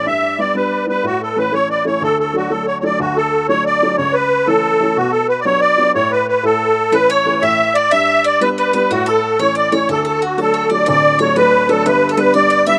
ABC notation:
X:1
M:6/8
L:1/16
Q:3/8=122
K:D
V:1 name="Mandolin"
z12 | z12 | z12 | z12 |
z12 | z12 | z12 | B2 c4 e4 d2 |
e4 d2 B2 B2 B2 | F2 A4 c2 d2 c2 | A2 A2 F2 A2 c2 d2 | d4 c2 B4 A2 |
B3 A B2 d2 d2 e2 |]
V:2 name="Accordion"
e4 d2 B4 B2 | F2 A2 B2 c2 d2 c2 | A2 A2 F2 A2 c3/2 c/2 d2 | F2 A4 c2 d4 |
c2 B4 A6 | F2 A2 B3/2 d/2 c2 d4 | c2 B2 B2 A6 | B2 c4 e4 d2 |
e4 d2 B2 B2 B2 | F2 A4 c2 d2 c2 | A2 A2 F2 A4 d2 | d4 c2 B4 A2 |
B3 A B2 d4 e2 |]
V:3 name="Upright piano"
G,,4 [G,B,D]2 [G,B,D]4 [G,B,D]2 | A,,4 [E,A,C]2 [E,A,C]4 [E,A,C]2 | D,,4 [F,A,D]2 [F,A,D]4 [F,A,D]2 | D,,6 [F,A,D]4 [F,A,D]2 |
C,,6 [E,A,C]4 [E,A,C]2 | B,,6 [F,B,D]4 [F,B,D]2 | A,,6 A,,6 | [E,A,C]4 [E,A,C]2 A,,6 |
G,,6 [G,B,D]4 [G,B,D]2 | A,,6 [E,A,C]4 [E,A,C]2 | D,,6 [F,A,D]4 [F,A,D]2 | [D,,,D,,]4 [F,A,D]2 [F,A,D]4 [F,A,D]2 |
[G,,,G,,]4 [G,B,D]2 [G,B,D]4 [G,B,D]2 |]